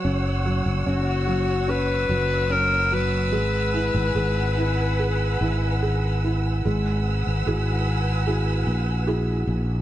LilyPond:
<<
  \new Staff \with { instrumentName = "String section" } { \time 4/4 \key e \lydian \tempo 4 = 73 << { e'''1~ | e'''1 | e'''1 | } \\ { <cis'' fis''>1 | <b' fis'' gis''>1 | <b' fis'' gis''>1 | } >> }
  \new Staff \with { instrumentName = "Alto saxophone" } { \time 4/4 \key e \lydian r4 fis'4 b'4 ais'8 b'8~ | b'2. r4 | r1 | }
  \new Staff \with { instrumentName = "Felt piano" } { \time 4/4 \key e \lydian <fis cis'>8 fis8 cis'8 fis8 cis'8 fis8 cis'8 fis8 | gis8 e'8 gis'8 e'8 gis'8 e'8 gis'8 e'8 | gis4 <e' fis' gis'>4 <e' fis' gis'>4 <e' fis' gis'>4 | }
  \new Staff \with { instrumentName = "Fretless electric bass" } { \clef bass \time 4/4 \key e \lydian fis,,8. fis,,16 fis,,4. fis,,4. | gis,,8. gis,,16 gis,,4. gis,,4. | gis,,8. gis,,16 gis,,4. ais,,4 ais,,8 | }
>>